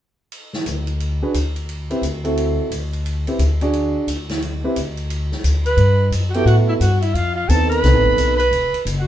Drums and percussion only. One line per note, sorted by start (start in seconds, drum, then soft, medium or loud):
0.32 ride soft
0.53 snare soft
0.66 hi-hat pedal soft
0.66 ride soft
0.87 ride soft
1.00 ride soft
1.34 hi-hat pedal soft
1.34 ride soft
1.56 ride soft
1.69 ride soft
1.91 ride soft
2.03 hi-hat pedal soft
2.03 ride soft
2.25 ride soft
2.37 ride soft
2.71 hi-hat pedal soft
2.71 ride soft
2.93 ride soft
3.06 ride soft
3.27 ride soft
3.39 hi-hat pedal soft
3.39 ride soft
3.61 ride soft
3.73 ride soft
4.08 hi-hat pedal soft
4.08 ride medium
4.29 snare soft
4.29 ride soft
4.42 ride soft
4.76 hi-hat pedal soft
4.76 ride soft
4.97 ride soft
5.10 ride soft
5.32 snare soft
5.44 hi-hat pedal soft
5.44 ride soft
5.66 ride soft
5.78 ride soft
6.12 hi-hat pedal soft
6.12 ride medium
6.34 ride soft
6.47 ride soft
6.81 hi-hat pedal medium
6.81 ride soft
7.02 ride soft
7.15 ride soft
7.49 hi-hat pedal medium
7.49 ride medium
7.72 ride soft
7.84 snare soft
7.84 ride soft
8.05 kick soft
8.18 hi-hat pedal soft
8.18 ride medium
8.40 ride soft
8.53 ride soft
8.74 ride soft
8.87 hi-hat pedal soft
8.87 ride medium